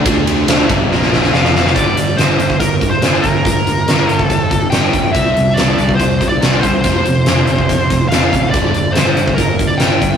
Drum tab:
RD |x-x-x-x---------|----------------|----------------|----------------|
HH |----------------|x-x-x-x-x-x-x-x-|x-x-x-x-x-x-x-x-|x-x-x-x-x-x-x-x-|
SD |--o-o---oooooooo|----o-------o---|----o-------o---|----o-------o---|
BD |o-----o---------|o------oo-o---o-|o------oo-o---o-|o------oo-o---o-|

RD |----------------|----------------|
HH |x-x-x-x-x-x-x-x-|x-x-x-x-x-x-x-x-|
SD |----o-------o---|----o-------o---|
BD |o------oo-o---o-|o------oo-o---o-|